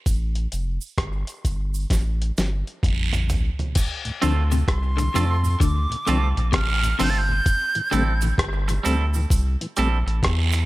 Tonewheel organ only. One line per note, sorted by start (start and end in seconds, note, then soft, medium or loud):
4.05 4.11 D2 medium
4.05 4.11 A2 medium
4.22 4.33 F3 medium
4.22 4.33 C4 medium
4.22 4.33 D4 medium
4.52 4.58 D2 medium
4.52 4.58 A2 medium
4.98 5.04 D2 medium
4.98 5.04 A2 medium
5.14 5.25 F3 medium
5.14 5.25 C4 medium
5.14 5.25 D4 medium
5.43 5.50 D2 medium
5.43 5.50 A2 medium
5.90 5.96 D2 medium
5.90 5.96 A2 medium
6.07 6.17 F3 medium
6.07 6.17 C4 medium
6.07 6.18 D4 medium
6.35 6.42 D2 medium
6.35 6.42 A2 medium
6.83 6.89 D2 medium
6.83 6.89 A2 medium
6.99 7.10 F3 medium
6.99 7.10 C4 medium
6.99 7.10 D4 medium
7.29 7.35 D2 medium
7.29 7.35 A2 medium
7.75 7.81 A2 medium
7.75 7.81 E3 medium
7.93 8.03 G3 medium
7.93 8.03 A3 medium
7.93 8.03 C4 medium
8.23 8.28 A2 medium
8.23 8.28 E3 medium
8.69 8.74 A2 medium
8.69 8.74 E3 medium
8.86 8.96 G3 medium
8.86 8.96 A3 medium
8.86 8.96 C4 medium
9.16 9.21 A2 medium
9.16 9.21 E3 medium
9.61 9.66 A2 medium
9.61 9.67 E3 medium
9.78 9.88 G3 medium
9.78 9.88 A3 medium
9.78 9.88 C4 medium
10.53 10.59 A2 medium
10.53 10.59 E3 medium